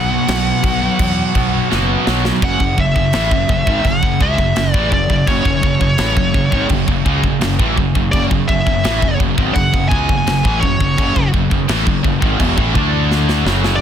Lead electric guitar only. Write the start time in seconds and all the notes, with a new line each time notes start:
Already playing: F#5
2.44 F#5
2.80 E5
3.87 F#5
4.22 E5
4.72 D5
4.94 D5
5.28 C#5
8.12 D5
8.48 E5
9.55 F#5
9.89 G#5
10.60 C#5
13.76 D5